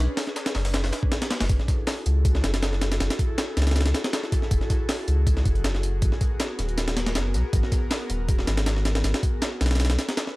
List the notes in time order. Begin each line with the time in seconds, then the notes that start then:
Already playing: C#4 D4 G#4 B4
0.17 snare, closed hi-hat, open hi-hat
0.27 snare
0.36 snare, closed hi-hat, tambourine
0.46 snare, closed hi-hat
0.55 F#1, snare, open hi-hat
0.65 snare, closed hi-hat, open hi-hat
0.74 snare, closed hi-hat, open hi-hat
0.84 snare, open hi-hat
0.93 snare, closed hi-hat, open hi-hat
1.03 kick
1.12 snare, closed hi-hat
1.22 snare, closed hi-hat
1.30 snare, closed hi-hat, open hi-hat
1.40 F#1, snare, closed hi-hat, open hi-hat
1.49 F#1 E4 F#4 G#4 A4, kick, closed hi-hat, tambourine
1.59 snare
1.68 kick, snare, closed hi-hat, tambourine
1.87 snare, closed hi-hat, open hi-hat
2.06 C#2, closed hi-hat, tambourine
2.25 kick, closed hi-hat, tambourine
2.35 snare
2.44 F#1, snare, closed hi-hat, tambourine
2.54 snare, closed hi-hat
2.62 snare, closed hi-hat, tambourine
2.73 snare
2.81 snare, closed hi-hat, tambourine
2.92 snare, closed hi-hat
3.00 F#1, snare, closed hi-hat, tambourine
3.10 snare, closed hi-hat
3.19 kick, closed hi-hat, tambourine
3.38 snare, closed hi-hat, tambourine
3.57 C#2, snare, closed hi-hat, tambourine
3.62 snare, closed hi-hat
3.67 snare, closed hi-hat
3.71 snare, closed hi-hat
3.76 snare, closed hi-hat, tambourine
3.81 snare, closed hi-hat
3.86 snare, closed hi-hat
3.94 snare, closed hi-hat, tambourine
4.04 snare, closed hi-hat
4.13 snare, closed hi-hat, tambourine
4.23 snare
4.32 kick, snare, closed hi-hat, tambourine
4.42 snare
4.51 F#1, kick, closed hi-hat, tambourine
4.61 snare
4.70 kick, snare, closed hi-hat, tambourine
4.89 snare, closed hi-hat, open hi-hat
5.08 C#2, closed hi-hat, tambourine
5.27 kick, closed hi-hat, tambourine
5.37 snare
5.45 F#1, kick, closed hi-hat, tambourine
5.55 closed hi-hat
5.64 snare, closed hi-hat, tambourine
5.75 snare
5.83 closed hi-hat, tambourine
6.02 G#1 B3 A#4, kick, closed hi-hat, tambourine
6.12 snare
6.21 kick, closed hi-hat, tambourine
6.40 snare, closed hi-hat, tambourine
6.59 D#1, snare, closed hi-hat, tambourine
6.69 closed hi-hat
6.78 snare, closed hi-hat, tambourine
6.88 snare, closed hi-hat
6.97 snare, closed hi-hat, tambourine
7.06 snare, closed hi-hat
7.15 F#1, snare, closed hi-hat, tambourine
7.34 B1, snare, closed hi-hat, tambourine
7.53 G#1, kick, closed hi-hat, tambourine
7.63 snare
7.72 kick, snare, closed hi-hat, tambourine
7.91 snare, closed hi-hat, open hi-hat
8.10 D#1, closed hi-hat, tambourine
8.28 kick, closed hi-hat, tambourine
8.38 snare
8.47 G#1, snare, closed hi-hat, tambourine
8.57 snare, closed hi-hat
8.66 snare, closed hi-hat, tambourine
8.76 snare
8.85 snare, closed hi-hat, tambourine
8.95 snare, closed hi-hat
9.04 G#1, snare, closed hi-hat, tambourine
9.14 snare, closed hi-hat
9.23 kick, closed hi-hat, tambourine
9.42 snare, closed hi-hat, tambourine
9.61 B1, snare, closed hi-hat, tambourine
9.66 snare, closed hi-hat
9.71 snare, closed hi-hat
9.75 snare, closed hi-hat
9.79 C#4 D4 A4 B4, snare, closed hi-hat, tambourine
9.85 snare, closed hi-hat
9.90 snare, closed hi-hat
9.98 snare, closed hi-hat, tambourine
10.09 snare, closed hi-hat
10.17 snare, closed hi-hat, tambourine
10.27 snare